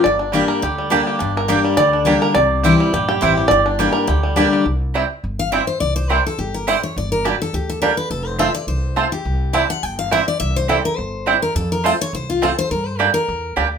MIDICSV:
0, 0, Header, 1, 5, 480
1, 0, Start_track
1, 0, Tempo, 287632
1, 77, Time_signature, 4, 2, 24, 8
1, 22999, End_track
2, 0, Start_track
2, 0, Title_t, "Mandolin"
2, 0, Program_c, 0, 25
2, 549, Note_on_c, 0, 58, 83
2, 552, Note_on_c, 0, 67, 90
2, 560, Note_on_c, 0, 74, 84
2, 566, Note_on_c, 0, 79, 101
2, 720, Note_off_c, 0, 58, 0
2, 722, Note_off_c, 0, 67, 0
2, 726, Note_off_c, 0, 74, 0
2, 728, Note_off_c, 0, 79, 0
2, 1515, Note_on_c, 0, 58, 90
2, 1522, Note_on_c, 0, 67, 91
2, 1526, Note_on_c, 0, 74, 97
2, 1535, Note_on_c, 0, 79, 88
2, 1685, Note_off_c, 0, 58, 0
2, 1688, Note_off_c, 0, 67, 0
2, 1690, Note_off_c, 0, 74, 0
2, 1695, Note_off_c, 0, 79, 0
2, 2477, Note_on_c, 0, 58, 83
2, 2486, Note_on_c, 0, 67, 93
2, 2487, Note_on_c, 0, 74, 99
2, 2496, Note_on_c, 0, 79, 99
2, 2647, Note_off_c, 0, 58, 0
2, 2652, Note_off_c, 0, 67, 0
2, 2652, Note_off_c, 0, 74, 0
2, 2657, Note_off_c, 0, 79, 0
2, 3440, Note_on_c, 0, 58, 86
2, 3445, Note_on_c, 0, 67, 94
2, 3449, Note_on_c, 0, 74, 91
2, 3456, Note_on_c, 0, 79, 93
2, 3610, Note_off_c, 0, 58, 0
2, 3613, Note_off_c, 0, 67, 0
2, 3614, Note_off_c, 0, 74, 0
2, 3618, Note_off_c, 0, 79, 0
2, 4406, Note_on_c, 0, 60, 87
2, 4411, Note_on_c, 0, 64, 96
2, 4413, Note_on_c, 0, 72, 95
2, 4420, Note_on_c, 0, 79, 102
2, 4574, Note_off_c, 0, 60, 0
2, 4577, Note_off_c, 0, 64, 0
2, 4578, Note_off_c, 0, 72, 0
2, 4581, Note_off_c, 0, 79, 0
2, 5368, Note_on_c, 0, 60, 87
2, 5374, Note_on_c, 0, 64, 93
2, 5378, Note_on_c, 0, 72, 93
2, 5382, Note_on_c, 0, 79, 100
2, 5536, Note_off_c, 0, 60, 0
2, 5539, Note_off_c, 0, 64, 0
2, 5541, Note_off_c, 0, 72, 0
2, 5543, Note_off_c, 0, 79, 0
2, 6321, Note_on_c, 0, 58, 82
2, 6327, Note_on_c, 0, 67, 82
2, 6333, Note_on_c, 0, 74, 89
2, 6337, Note_on_c, 0, 79, 95
2, 6493, Note_off_c, 0, 58, 0
2, 6496, Note_off_c, 0, 67, 0
2, 6499, Note_off_c, 0, 74, 0
2, 6501, Note_off_c, 0, 79, 0
2, 7280, Note_on_c, 0, 58, 85
2, 7284, Note_on_c, 0, 67, 96
2, 7290, Note_on_c, 0, 74, 100
2, 7296, Note_on_c, 0, 79, 97
2, 7453, Note_off_c, 0, 58, 0
2, 7455, Note_off_c, 0, 67, 0
2, 7458, Note_off_c, 0, 74, 0
2, 7461, Note_off_c, 0, 79, 0
2, 8245, Note_on_c, 0, 60, 80
2, 8254, Note_on_c, 0, 64, 87
2, 8260, Note_on_c, 0, 72, 85
2, 8266, Note_on_c, 0, 79, 93
2, 8416, Note_off_c, 0, 60, 0
2, 8421, Note_off_c, 0, 64, 0
2, 8424, Note_off_c, 0, 72, 0
2, 8426, Note_off_c, 0, 79, 0
2, 9209, Note_on_c, 0, 60, 87
2, 9218, Note_on_c, 0, 64, 85
2, 9218, Note_on_c, 0, 72, 91
2, 9222, Note_on_c, 0, 79, 97
2, 9378, Note_off_c, 0, 60, 0
2, 9383, Note_off_c, 0, 64, 0
2, 9383, Note_off_c, 0, 72, 0
2, 9385, Note_off_c, 0, 79, 0
2, 10169, Note_on_c, 0, 60, 88
2, 10175, Note_on_c, 0, 64, 95
2, 10181, Note_on_c, 0, 72, 90
2, 10186, Note_on_c, 0, 79, 103
2, 10338, Note_off_c, 0, 60, 0
2, 10341, Note_off_c, 0, 64, 0
2, 10344, Note_off_c, 0, 72, 0
2, 10347, Note_off_c, 0, 79, 0
2, 11133, Note_on_c, 0, 60, 94
2, 11141, Note_on_c, 0, 64, 96
2, 11148, Note_on_c, 0, 72, 94
2, 11152, Note_on_c, 0, 79, 99
2, 11299, Note_off_c, 0, 60, 0
2, 11304, Note_off_c, 0, 64, 0
2, 11307, Note_off_c, 0, 72, 0
2, 11309, Note_off_c, 0, 79, 0
2, 12090, Note_on_c, 0, 58, 81
2, 12095, Note_on_c, 0, 67, 90
2, 12100, Note_on_c, 0, 74, 98
2, 12108, Note_on_c, 0, 79, 95
2, 12258, Note_off_c, 0, 58, 0
2, 12260, Note_off_c, 0, 67, 0
2, 12262, Note_off_c, 0, 74, 0
2, 12266, Note_off_c, 0, 79, 0
2, 13047, Note_on_c, 0, 58, 87
2, 13053, Note_on_c, 0, 67, 91
2, 13057, Note_on_c, 0, 74, 86
2, 13063, Note_on_c, 0, 79, 97
2, 13215, Note_off_c, 0, 58, 0
2, 13218, Note_off_c, 0, 67, 0
2, 13220, Note_off_c, 0, 74, 0
2, 13223, Note_off_c, 0, 79, 0
2, 13994, Note_on_c, 0, 60, 89
2, 13998, Note_on_c, 0, 65, 86
2, 14007, Note_on_c, 0, 72, 93
2, 14011, Note_on_c, 0, 81, 92
2, 14167, Note_off_c, 0, 60, 0
2, 14169, Note_off_c, 0, 65, 0
2, 14174, Note_off_c, 0, 72, 0
2, 14176, Note_off_c, 0, 81, 0
2, 14954, Note_on_c, 0, 60, 78
2, 14963, Note_on_c, 0, 65, 95
2, 14964, Note_on_c, 0, 72, 92
2, 14971, Note_on_c, 0, 81, 97
2, 15126, Note_off_c, 0, 60, 0
2, 15130, Note_off_c, 0, 65, 0
2, 15131, Note_off_c, 0, 72, 0
2, 15135, Note_off_c, 0, 81, 0
2, 15908, Note_on_c, 0, 60, 88
2, 15915, Note_on_c, 0, 64, 98
2, 15920, Note_on_c, 0, 72, 84
2, 15926, Note_on_c, 0, 79, 94
2, 16082, Note_off_c, 0, 60, 0
2, 16085, Note_off_c, 0, 64, 0
2, 16088, Note_off_c, 0, 72, 0
2, 16091, Note_off_c, 0, 79, 0
2, 16876, Note_on_c, 0, 60, 88
2, 16881, Note_on_c, 0, 64, 98
2, 16887, Note_on_c, 0, 72, 99
2, 16890, Note_on_c, 0, 79, 92
2, 17044, Note_off_c, 0, 60, 0
2, 17047, Note_off_c, 0, 64, 0
2, 17050, Note_off_c, 0, 72, 0
2, 17052, Note_off_c, 0, 79, 0
2, 17827, Note_on_c, 0, 60, 88
2, 17835, Note_on_c, 0, 64, 85
2, 17842, Note_on_c, 0, 72, 90
2, 17848, Note_on_c, 0, 79, 96
2, 17999, Note_off_c, 0, 60, 0
2, 18003, Note_off_c, 0, 64, 0
2, 18006, Note_off_c, 0, 72, 0
2, 18009, Note_off_c, 0, 79, 0
2, 18792, Note_on_c, 0, 60, 87
2, 18804, Note_on_c, 0, 64, 86
2, 18807, Note_on_c, 0, 72, 88
2, 18814, Note_on_c, 0, 79, 102
2, 18961, Note_off_c, 0, 60, 0
2, 18966, Note_off_c, 0, 64, 0
2, 18968, Note_off_c, 0, 72, 0
2, 18972, Note_off_c, 0, 79, 0
2, 19753, Note_on_c, 0, 60, 94
2, 19758, Note_on_c, 0, 65, 87
2, 19767, Note_on_c, 0, 72, 100
2, 19768, Note_on_c, 0, 81, 88
2, 19920, Note_off_c, 0, 60, 0
2, 19923, Note_off_c, 0, 65, 0
2, 19927, Note_off_c, 0, 72, 0
2, 19928, Note_off_c, 0, 81, 0
2, 20721, Note_on_c, 0, 60, 92
2, 20727, Note_on_c, 0, 65, 91
2, 20733, Note_on_c, 0, 72, 89
2, 20736, Note_on_c, 0, 81, 102
2, 20884, Note_off_c, 0, 60, 0
2, 20887, Note_off_c, 0, 65, 0
2, 20890, Note_off_c, 0, 72, 0
2, 20891, Note_off_c, 0, 81, 0
2, 21675, Note_on_c, 0, 58, 96
2, 21683, Note_on_c, 0, 67, 96
2, 21688, Note_on_c, 0, 74, 96
2, 21696, Note_on_c, 0, 79, 101
2, 21840, Note_off_c, 0, 58, 0
2, 21844, Note_off_c, 0, 67, 0
2, 21847, Note_off_c, 0, 74, 0
2, 21850, Note_off_c, 0, 79, 0
2, 22631, Note_on_c, 0, 58, 92
2, 22638, Note_on_c, 0, 67, 96
2, 22640, Note_on_c, 0, 74, 96
2, 22645, Note_on_c, 0, 79, 96
2, 22798, Note_off_c, 0, 58, 0
2, 22801, Note_off_c, 0, 67, 0
2, 22802, Note_off_c, 0, 74, 0
2, 22804, Note_off_c, 0, 79, 0
2, 22999, End_track
3, 0, Start_track
3, 0, Title_t, "Steel-string acoustic guitar"
3, 0, Program_c, 1, 25
3, 94, Note_on_c, 1, 43, 84
3, 557, Note_on_c, 1, 55, 84
3, 565, Note_on_c, 1, 58, 83
3, 577, Note_on_c, 1, 62, 91
3, 590, Note_on_c, 1, 67, 99
3, 1006, Note_off_c, 1, 43, 0
3, 1018, Note_off_c, 1, 55, 0
3, 1022, Note_off_c, 1, 58, 0
3, 1028, Note_off_c, 1, 62, 0
3, 1034, Note_off_c, 1, 67, 0
3, 1041, Note_on_c, 1, 50, 94
3, 1506, Note_on_c, 1, 55, 90
3, 1525, Note_on_c, 1, 58, 93
3, 1530, Note_on_c, 1, 62, 97
3, 1541, Note_on_c, 1, 67, 94
3, 1961, Note_off_c, 1, 50, 0
3, 1974, Note_off_c, 1, 55, 0
3, 1983, Note_off_c, 1, 58, 0
3, 1986, Note_off_c, 1, 62, 0
3, 1991, Note_off_c, 1, 67, 0
3, 2007, Note_on_c, 1, 43, 88
3, 2474, Note_on_c, 1, 55, 88
3, 2482, Note_on_c, 1, 58, 98
3, 2500, Note_on_c, 1, 62, 94
3, 2500, Note_on_c, 1, 67, 90
3, 2925, Note_off_c, 1, 43, 0
3, 2939, Note_off_c, 1, 55, 0
3, 2943, Note_off_c, 1, 58, 0
3, 2952, Note_off_c, 1, 62, 0
3, 2952, Note_off_c, 1, 67, 0
3, 2955, Note_on_c, 1, 50, 97
3, 3421, Note_on_c, 1, 55, 86
3, 3434, Note_on_c, 1, 58, 100
3, 3445, Note_on_c, 1, 62, 100
3, 3454, Note_on_c, 1, 67, 95
3, 3880, Note_off_c, 1, 50, 0
3, 3894, Note_off_c, 1, 55, 0
3, 3900, Note_off_c, 1, 58, 0
3, 3906, Note_off_c, 1, 62, 0
3, 3910, Note_off_c, 1, 67, 0
3, 3915, Note_on_c, 1, 48, 98
3, 4406, Note_on_c, 1, 52, 94
3, 4415, Note_on_c, 1, 55, 102
3, 4431, Note_on_c, 1, 60, 95
3, 4438, Note_on_c, 1, 64, 97
3, 4841, Note_off_c, 1, 48, 0
3, 4867, Note_off_c, 1, 52, 0
3, 4872, Note_off_c, 1, 55, 0
3, 4880, Note_off_c, 1, 60, 0
3, 4883, Note_off_c, 1, 64, 0
3, 4902, Note_on_c, 1, 43, 91
3, 5354, Note_on_c, 1, 52, 89
3, 5373, Note_on_c, 1, 55, 94
3, 5379, Note_on_c, 1, 60, 93
3, 5394, Note_on_c, 1, 64, 94
3, 5815, Note_off_c, 1, 43, 0
3, 5822, Note_off_c, 1, 52, 0
3, 5831, Note_off_c, 1, 55, 0
3, 5835, Note_off_c, 1, 60, 0
3, 5842, Note_off_c, 1, 64, 0
3, 5858, Note_on_c, 1, 43, 94
3, 6321, Note_on_c, 1, 55, 91
3, 6336, Note_on_c, 1, 58, 87
3, 6339, Note_on_c, 1, 62, 91
3, 6349, Note_on_c, 1, 67, 102
3, 6774, Note_off_c, 1, 43, 0
3, 6786, Note_off_c, 1, 55, 0
3, 6794, Note_off_c, 1, 58, 0
3, 6795, Note_off_c, 1, 62, 0
3, 6799, Note_on_c, 1, 50, 94
3, 6800, Note_off_c, 1, 67, 0
3, 7275, Note_on_c, 1, 55, 99
3, 7291, Note_on_c, 1, 58, 91
3, 7294, Note_on_c, 1, 62, 99
3, 7303, Note_on_c, 1, 67, 94
3, 7724, Note_off_c, 1, 50, 0
3, 7744, Note_off_c, 1, 55, 0
3, 7751, Note_off_c, 1, 58, 0
3, 7753, Note_off_c, 1, 62, 0
3, 7758, Note_off_c, 1, 67, 0
3, 9001, Note_on_c, 1, 77, 99
3, 9204, Note_off_c, 1, 77, 0
3, 9211, Note_on_c, 1, 76, 78
3, 9459, Note_off_c, 1, 76, 0
3, 9466, Note_on_c, 1, 72, 86
3, 9677, Note_off_c, 1, 72, 0
3, 9684, Note_on_c, 1, 74, 99
3, 9936, Note_off_c, 1, 74, 0
3, 9942, Note_on_c, 1, 72, 93
3, 10177, Note_off_c, 1, 72, 0
3, 10177, Note_on_c, 1, 70, 86
3, 10433, Note_off_c, 1, 70, 0
3, 10455, Note_on_c, 1, 69, 97
3, 10657, Note_off_c, 1, 69, 0
3, 10657, Note_on_c, 1, 67, 74
3, 10913, Note_off_c, 1, 67, 0
3, 10920, Note_on_c, 1, 70, 89
3, 11143, Note_off_c, 1, 70, 0
3, 11143, Note_on_c, 1, 72, 83
3, 11395, Note_off_c, 1, 72, 0
3, 11405, Note_on_c, 1, 73, 94
3, 11611, Note_off_c, 1, 73, 0
3, 11642, Note_on_c, 1, 74, 97
3, 11872, Note_off_c, 1, 74, 0
3, 11879, Note_on_c, 1, 70, 89
3, 12088, Note_off_c, 1, 70, 0
3, 12105, Note_on_c, 1, 66, 70
3, 12356, Note_off_c, 1, 66, 0
3, 12376, Note_on_c, 1, 69, 100
3, 12576, Note_off_c, 1, 69, 0
3, 12583, Note_on_c, 1, 67, 82
3, 12834, Note_off_c, 1, 67, 0
3, 12841, Note_on_c, 1, 69, 88
3, 13036, Note_off_c, 1, 69, 0
3, 13043, Note_on_c, 1, 70, 89
3, 13298, Note_off_c, 1, 70, 0
3, 13305, Note_on_c, 1, 71, 100
3, 13519, Note_off_c, 1, 71, 0
3, 13527, Note_on_c, 1, 69, 84
3, 13788, Note_off_c, 1, 69, 0
3, 13788, Note_on_c, 1, 72, 88
3, 13998, Note_off_c, 1, 72, 0
3, 14004, Note_on_c, 1, 76, 100
3, 14254, Note_off_c, 1, 76, 0
3, 14260, Note_on_c, 1, 74, 97
3, 14475, Note_off_c, 1, 74, 0
3, 14483, Note_on_c, 1, 72, 85
3, 15176, Note_off_c, 1, 72, 0
3, 15220, Note_on_c, 1, 67, 85
3, 15870, Note_off_c, 1, 67, 0
3, 15910, Note_on_c, 1, 81, 84
3, 16173, Note_off_c, 1, 81, 0
3, 16187, Note_on_c, 1, 78, 111
3, 16404, Note_off_c, 1, 78, 0
3, 16404, Note_on_c, 1, 79, 110
3, 16660, Note_off_c, 1, 79, 0
3, 16666, Note_on_c, 1, 77, 102
3, 16875, Note_off_c, 1, 77, 0
3, 16897, Note_on_c, 1, 76, 90
3, 17146, Note_off_c, 1, 76, 0
3, 17153, Note_on_c, 1, 74, 94
3, 17343, Note_off_c, 1, 74, 0
3, 17349, Note_on_c, 1, 76, 109
3, 17611, Note_off_c, 1, 76, 0
3, 17629, Note_on_c, 1, 72, 95
3, 17835, Note_off_c, 1, 72, 0
3, 17842, Note_on_c, 1, 69, 83
3, 18097, Note_off_c, 1, 69, 0
3, 18109, Note_on_c, 1, 70, 101
3, 18298, Note_off_c, 1, 70, 0
3, 18298, Note_on_c, 1, 72, 100
3, 19052, Note_off_c, 1, 72, 0
3, 19064, Note_on_c, 1, 70, 89
3, 19272, Note_off_c, 1, 70, 0
3, 19288, Note_on_c, 1, 69, 88
3, 19539, Note_off_c, 1, 69, 0
3, 19557, Note_on_c, 1, 70, 88
3, 19791, Note_off_c, 1, 70, 0
3, 19791, Note_on_c, 1, 72, 88
3, 20030, Note_off_c, 1, 72, 0
3, 20049, Note_on_c, 1, 73, 124
3, 20244, Note_off_c, 1, 73, 0
3, 20269, Note_on_c, 1, 72, 89
3, 20509, Note_off_c, 1, 72, 0
3, 20519, Note_on_c, 1, 65, 80
3, 20718, Note_off_c, 1, 65, 0
3, 20746, Note_on_c, 1, 69, 83
3, 20987, Note_off_c, 1, 69, 0
3, 21002, Note_on_c, 1, 72, 112
3, 21200, Note_off_c, 1, 72, 0
3, 21211, Note_on_c, 1, 70, 86
3, 21465, Note_off_c, 1, 70, 0
3, 21465, Note_on_c, 1, 72, 115
3, 21669, Note_off_c, 1, 72, 0
3, 21669, Note_on_c, 1, 69, 77
3, 21918, Note_off_c, 1, 69, 0
3, 21925, Note_on_c, 1, 70, 102
3, 22577, Note_off_c, 1, 70, 0
3, 22999, End_track
4, 0, Start_track
4, 0, Title_t, "Five-string banjo"
4, 0, Program_c, 2, 105
4, 0, Note_on_c, 2, 58, 63
4, 0, Note_on_c, 2, 62, 62
4, 64, Note_on_c, 2, 74, 113
4, 314, Note_off_c, 2, 74, 0
4, 321, Note_off_c, 2, 62, 0
4, 321, Note_on_c, 2, 62, 59
4, 530, Note_off_c, 2, 58, 0
4, 537, Note_on_c, 2, 55, 61
4, 804, Note_on_c, 2, 70, 93
4, 986, Note_off_c, 2, 62, 0
4, 1037, Note_off_c, 2, 70, 0
4, 1052, Note_on_c, 2, 67, 70
4, 1301, Note_off_c, 2, 55, 0
4, 1308, Note_on_c, 2, 55, 64
4, 1495, Note_off_c, 2, 67, 0
4, 1514, Note_on_c, 2, 62, 63
4, 1786, Note_on_c, 2, 67, 59
4, 1969, Note_off_c, 2, 62, 0
4, 1989, Note_on_c, 2, 62, 64
4, 2290, Note_on_c, 2, 70, 92
4, 2468, Note_off_c, 2, 67, 0
4, 2475, Note_on_c, 2, 67, 64
4, 2690, Note_off_c, 2, 62, 0
4, 2738, Note_off_c, 2, 55, 0
4, 2744, Note_on_c, 2, 55, 70
4, 2955, Note_on_c, 2, 74, 108
4, 2997, Note_off_c, 2, 70, 0
4, 3224, Note_on_c, 2, 62, 64
4, 3416, Note_off_c, 2, 62, 0
4, 3429, Note_off_c, 2, 74, 0
4, 3436, Note_on_c, 2, 62, 63
4, 3702, Note_on_c, 2, 70, 91
4, 3906, Note_off_c, 2, 62, 0
4, 3913, Note_on_c, 2, 74, 100
4, 3930, Note_off_c, 2, 70, 0
4, 4368, Note_off_c, 2, 74, 0
4, 4390, Note_off_c, 2, 67, 0
4, 4397, Note_on_c, 2, 67, 62
4, 4669, Note_off_c, 2, 55, 0
4, 4676, Note_on_c, 2, 55, 77
4, 4894, Note_off_c, 2, 67, 0
4, 4900, Note_on_c, 2, 67, 70
4, 5148, Note_off_c, 2, 67, 0
4, 5148, Note_on_c, 2, 67, 101
4, 5371, Note_on_c, 2, 64, 60
4, 5611, Note_off_c, 2, 67, 0
4, 5631, Note_on_c, 2, 67, 62
4, 5800, Note_off_c, 2, 64, 0
4, 5806, Note_on_c, 2, 74, 124
4, 6097, Note_off_c, 2, 74, 0
4, 6104, Note_on_c, 2, 62, 62
4, 6315, Note_off_c, 2, 55, 0
4, 6322, Note_on_c, 2, 55, 63
4, 6551, Note_on_c, 2, 70, 98
4, 6764, Note_off_c, 2, 62, 0
4, 6798, Note_off_c, 2, 70, 0
4, 6807, Note_off_c, 2, 67, 0
4, 6807, Note_on_c, 2, 67, 75
4, 7020, Note_off_c, 2, 55, 0
4, 7065, Note_on_c, 2, 55, 62
4, 7257, Note_off_c, 2, 67, 0
4, 7280, Note_on_c, 2, 62, 66
4, 7560, Note_on_c, 2, 67, 63
4, 7725, Note_off_c, 2, 55, 0
4, 7768, Note_off_c, 2, 62, 0
4, 7775, Note_off_c, 2, 67, 0
4, 8264, Note_on_c, 2, 55, 68
4, 8270, Note_on_c, 2, 60, 66
4, 8273, Note_on_c, 2, 64, 67
4, 8377, Note_off_c, 2, 55, 0
4, 8378, Note_off_c, 2, 60, 0
4, 8381, Note_off_c, 2, 64, 0
4, 9221, Note_on_c, 2, 55, 68
4, 9231, Note_on_c, 2, 60, 67
4, 9236, Note_on_c, 2, 64, 66
4, 9335, Note_off_c, 2, 55, 0
4, 9340, Note_off_c, 2, 64, 0
4, 9341, Note_off_c, 2, 60, 0
4, 10185, Note_on_c, 2, 55, 72
4, 10191, Note_on_c, 2, 60, 67
4, 10199, Note_on_c, 2, 64, 69
4, 10298, Note_off_c, 2, 55, 0
4, 10298, Note_off_c, 2, 60, 0
4, 10300, Note_off_c, 2, 64, 0
4, 11143, Note_on_c, 2, 55, 72
4, 11151, Note_on_c, 2, 60, 70
4, 11157, Note_on_c, 2, 64, 70
4, 11255, Note_off_c, 2, 55, 0
4, 11258, Note_off_c, 2, 60, 0
4, 11263, Note_off_c, 2, 64, 0
4, 12103, Note_on_c, 2, 55, 66
4, 12110, Note_on_c, 2, 62, 66
4, 12144, Note_off_c, 2, 62, 0
4, 12215, Note_off_c, 2, 55, 0
4, 13058, Note_on_c, 2, 55, 72
4, 13067, Note_on_c, 2, 62, 71
4, 13101, Note_off_c, 2, 62, 0
4, 13171, Note_off_c, 2, 55, 0
4, 14006, Note_on_c, 2, 57, 65
4, 14012, Note_on_c, 2, 60, 65
4, 14023, Note_on_c, 2, 65, 66
4, 14124, Note_off_c, 2, 57, 0
4, 14128, Note_off_c, 2, 60, 0
4, 14131, Note_off_c, 2, 65, 0
4, 14957, Note_on_c, 2, 57, 70
4, 14968, Note_on_c, 2, 60, 67
4, 14969, Note_on_c, 2, 65, 72
4, 15079, Note_off_c, 2, 57, 0
4, 15081, Note_off_c, 2, 60, 0
4, 15084, Note_off_c, 2, 65, 0
4, 15925, Note_on_c, 2, 55, 69
4, 15926, Note_on_c, 2, 60, 67
4, 15933, Note_on_c, 2, 64, 69
4, 16041, Note_off_c, 2, 55, 0
4, 16041, Note_off_c, 2, 60, 0
4, 16045, Note_off_c, 2, 64, 0
4, 16878, Note_on_c, 2, 55, 73
4, 16888, Note_on_c, 2, 60, 69
4, 16892, Note_on_c, 2, 64, 70
4, 16998, Note_off_c, 2, 55, 0
4, 16998, Note_off_c, 2, 60, 0
4, 17003, Note_off_c, 2, 64, 0
4, 17846, Note_on_c, 2, 55, 69
4, 17851, Note_on_c, 2, 60, 68
4, 17853, Note_on_c, 2, 64, 68
4, 17960, Note_off_c, 2, 55, 0
4, 17961, Note_off_c, 2, 60, 0
4, 17961, Note_off_c, 2, 64, 0
4, 18801, Note_on_c, 2, 55, 67
4, 18810, Note_on_c, 2, 60, 71
4, 18816, Note_on_c, 2, 64, 72
4, 18916, Note_off_c, 2, 55, 0
4, 18918, Note_off_c, 2, 60, 0
4, 18923, Note_off_c, 2, 64, 0
4, 19777, Note_on_c, 2, 57, 70
4, 19784, Note_on_c, 2, 60, 67
4, 19790, Note_on_c, 2, 65, 66
4, 19883, Note_off_c, 2, 57, 0
4, 19885, Note_off_c, 2, 60, 0
4, 19889, Note_off_c, 2, 65, 0
4, 20731, Note_on_c, 2, 57, 70
4, 20740, Note_on_c, 2, 60, 73
4, 20742, Note_on_c, 2, 65, 73
4, 20839, Note_off_c, 2, 57, 0
4, 20842, Note_off_c, 2, 60, 0
4, 20844, Note_off_c, 2, 65, 0
4, 21690, Note_on_c, 2, 55, 71
4, 21697, Note_on_c, 2, 62, 71
4, 21731, Note_off_c, 2, 62, 0
4, 21798, Note_off_c, 2, 55, 0
4, 22639, Note_on_c, 2, 55, 67
4, 22645, Note_on_c, 2, 62, 71
4, 22679, Note_off_c, 2, 62, 0
4, 22753, Note_off_c, 2, 55, 0
4, 22999, End_track
5, 0, Start_track
5, 0, Title_t, "Upright bass"
5, 0, Program_c, 3, 32
5, 89, Note_on_c, 3, 31, 90
5, 694, Note_off_c, 3, 31, 0
5, 1044, Note_on_c, 3, 38, 86
5, 1650, Note_off_c, 3, 38, 0
5, 2012, Note_on_c, 3, 31, 92
5, 2617, Note_off_c, 3, 31, 0
5, 2968, Note_on_c, 3, 38, 92
5, 3575, Note_off_c, 3, 38, 0
5, 3934, Note_on_c, 3, 36, 100
5, 4539, Note_off_c, 3, 36, 0
5, 4890, Note_on_c, 3, 34, 94
5, 5299, Note_off_c, 3, 34, 0
5, 5380, Note_on_c, 3, 33, 81
5, 5785, Note_off_c, 3, 33, 0
5, 5853, Note_on_c, 3, 31, 100
5, 6460, Note_off_c, 3, 31, 0
5, 6815, Note_on_c, 3, 38, 88
5, 7421, Note_off_c, 3, 38, 0
5, 7769, Note_on_c, 3, 36, 94
5, 8377, Note_off_c, 3, 36, 0
5, 8738, Note_on_c, 3, 31, 88
5, 9344, Note_off_c, 3, 31, 0
5, 9699, Note_on_c, 3, 36, 97
5, 10304, Note_off_c, 3, 36, 0
5, 10653, Note_on_c, 3, 31, 89
5, 11259, Note_off_c, 3, 31, 0
5, 11621, Note_on_c, 3, 31, 97
5, 12224, Note_off_c, 3, 31, 0
5, 12571, Note_on_c, 3, 38, 88
5, 13176, Note_off_c, 3, 38, 0
5, 13521, Note_on_c, 3, 29, 96
5, 14129, Note_off_c, 3, 29, 0
5, 14471, Note_on_c, 3, 36, 89
5, 15081, Note_off_c, 3, 36, 0
5, 15441, Note_on_c, 3, 36, 96
5, 16047, Note_off_c, 3, 36, 0
5, 16403, Note_on_c, 3, 31, 89
5, 17007, Note_off_c, 3, 31, 0
5, 17364, Note_on_c, 3, 36, 99
5, 17967, Note_off_c, 3, 36, 0
5, 18325, Note_on_c, 3, 31, 90
5, 18928, Note_off_c, 3, 31, 0
5, 19277, Note_on_c, 3, 41, 100
5, 19882, Note_off_c, 3, 41, 0
5, 20245, Note_on_c, 3, 36, 91
5, 20847, Note_off_c, 3, 36, 0
5, 21209, Note_on_c, 3, 43, 96
5, 21810, Note_off_c, 3, 43, 0
5, 22169, Note_on_c, 3, 40, 94
5, 22570, Note_off_c, 3, 40, 0
5, 22645, Note_on_c, 3, 38, 83
5, 22999, Note_off_c, 3, 38, 0
5, 22999, End_track
0, 0, End_of_file